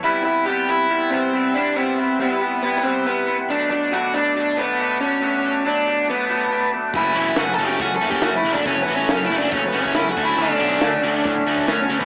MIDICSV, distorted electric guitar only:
0, 0, Header, 1, 2, 480
1, 0, Start_track
1, 0, Tempo, 431344
1, 42, Time_signature, 4, 2, 24, 8
1, 13409, End_track
2, 0, Start_track
2, 0, Title_t, "Distorted electric guitar"
2, 0, Program_c, 0, 30
2, 7961, Note_on_c, 0, 66, 104
2, 7971, Note_on_c, 0, 61, 90
2, 7976, Note_on_c, 0, 54, 73
2, 7976, Note_on_c, 0, 57, 78
2, 8273, Note_off_c, 0, 66, 0
2, 8278, Note_off_c, 0, 61, 0
2, 8280, Note_off_c, 0, 54, 0
2, 8280, Note_off_c, 0, 57, 0
2, 8444, Note_on_c, 0, 61, 75
2, 8444, Note_on_c, 0, 66, 86
2, 8452, Note_on_c, 0, 57, 81
2, 8456, Note_on_c, 0, 54, 75
2, 8754, Note_off_c, 0, 61, 0
2, 8755, Note_off_c, 0, 66, 0
2, 8758, Note_off_c, 0, 57, 0
2, 8760, Note_off_c, 0, 54, 0
2, 8912, Note_on_c, 0, 66, 111
2, 8927, Note_on_c, 0, 61, 100
2, 8928, Note_on_c, 0, 57, 90
2, 8931, Note_on_c, 0, 54, 82
2, 9228, Note_off_c, 0, 66, 0
2, 9236, Note_off_c, 0, 57, 0
2, 9236, Note_off_c, 0, 61, 0
2, 9238, Note_off_c, 0, 54, 0
2, 9403, Note_on_c, 0, 66, 84
2, 9405, Note_on_c, 0, 61, 76
2, 9415, Note_on_c, 0, 57, 79
2, 9417, Note_on_c, 0, 54, 61
2, 9713, Note_off_c, 0, 66, 0
2, 9715, Note_off_c, 0, 61, 0
2, 9719, Note_off_c, 0, 57, 0
2, 9721, Note_off_c, 0, 54, 0
2, 9879, Note_on_c, 0, 66, 96
2, 9881, Note_on_c, 0, 61, 101
2, 9888, Note_on_c, 0, 57, 92
2, 9892, Note_on_c, 0, 54, 80
2, 10192, Note_off_c, 0, 66, 0
2, 10193, Note_off_c, 0, 61, 0
2, 10196, Note_off_c, 0, 57, 0
2, 10198, Note_off_c, 0, 54, 0
2, 10355, Note_on_c, 0, 66, 100
2, 10366, Note_on_c, 0, 61, 86
2, 10369, Note_on_c, 0, 57, 92
2, 10372, Note_on_c, 0, 54, 73
2, 10670, Note_off_c, 0, 66, 0
2, 10675, Note_off_c, 0, 61, 0
2, 10677, Note_off_c, 0, 57, 0
2, 10678, Note_off_c, 0, 54, 0
2, 10824, Note_on_c, 0, 66, 104
2, 10829, Note_on_c, 0, 61, 102
2, 10831, Note_on_c, 0, 57, 103
2, 10836, Note_on_c, 0, 54, 94
2, 11144, Note_off_c, 0, 66, 0
2, 11147, Note_off_c, 0, 57, 0
2, 11147, Note_off_c, 0, 61, 0
2, 11150, Note_off_c, 0, 54, 0
2, 11310, Note_on_c, 0, 66, 96
2, 11323, Note_on_c, 0, 62, 72
2, 11327, Note_on_c, 0, 57, 74
2, 11332, Note_on_c, 0, 50, 64
2, 11627, Note_off_c, 0, 66, 0
2, 11634, Note_off_c, 0, 62, 0
2, 11636, Note_off_c, 0, 57, 0
2, 11638, Note_off_c, 0, 50, 0
2, 11783, Note_on_c, 0, 66, 102
2, 11789, Note_on_c, 0, 62, 83
2, 11792, Note_on_c, 0, 57, 94
2, 11796, Note_on_c, 0, 50, 86
2, 12104, Note_off_c, 0, 66, 0
2, 12107, Note_off_c, 0, 62, 0
2, 12109, Note_off_c, 0, 57, 0
2, 12110, Note_off_c, 0, 50, 0
2, 12279, Note_on_c, 0, 66, 90
2, 12286, Note_on_c, 0, 62, 89
2, 12288, Note_on_c, 0, 57, 78
2, 12295, Note_on_c, 0, 50, 84
2, 12592, Note_off_c, 0, 66, 0
2, 12596, Note_off_c, 0, 57, 0
2, 12596, Note_off_c, 0, 62, 0
2, 12600, Note_off_c, 0, 50, 0
2, 12762, Note_on_c, 0, 66, 106
2, 12767, Note_on_c, 0, 62, 112
2, 12768, Note_on_c, 0, 50, 85
2, 12769, Note_on_c, 0, 57, 98
2, 13074, Note_off_c, 0, 66, 0
2, 13076, Note_off_c, 0, 62, 0
2, 13077, Note_off_c, 0, 50, 0
2, 13077, Note_off_c, 0, 57, 0
2, 13235, Note_on_c, 0, 66, 77
2, 13241, Note_on_c, 0, 62, 77
2, 13246, Note_on_c, 0, 50, 71
2, 13247, Note_on_c, 0, 57, 80
2, 13409, Note_off_c, 0, 50, 0
2, 13409, Note_off_c, 0, 57, 0
2, 13409, Note_off_c, 0, 62, 0
2, 13409, Note_off_c, 0, 66, 0
2, 13409, End_track
0, 0, End_of_file